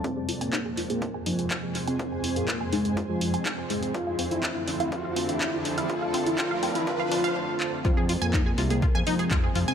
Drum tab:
HH |x-oxx-oxx-oxx-ox|x-oxx-oxx-oxx-ox|x-oxx-oxx-oxx-ox|x-oxx-oxx-ox----|
CP |----x-------x---|----x-------x---|----x-------x---|----x---------x-|
BD |o---o---o---o---|o---o---o---o---|o---o---o---o---|o---o---o-------|

HH |x-oxx-oxx-oxx-ox|
CP |----x-------x---|
BD |o---o---o---o---|